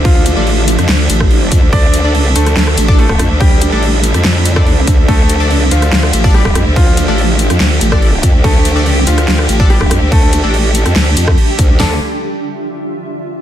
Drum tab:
CC |x---x---x---x---|x---x---x---x---|x---x---x---x---|x---x---x---x---|
HH |--x---xx--x---x-|--x---xx--x---x-|--x---xx--x---x-|--x---xx--x---x-|
SD |-------ro--r----|-------ror---rr-|-------ro--r----|-------ror---rr-|
FT |----------------|----------------|----------------|----------------|
BD |o----------o--o-|o----------o-o--|o----------o--o-|o----------o-o--|

CC |x---x---x---x---|x---x---x---x---|x---x---x---x---|----------------|
HH |--x---xx--x---x-|--x---xx--x---x-|--x---xx--x---x-|o---------------|
SD |-------ro--r----|-------ror---rr-|-------ro--r----|o---------------|
FT |----------------|----------------|----------------|o---------------|
BD |o----------o--o-|o----------o-o--|o----------o--o-|----------------|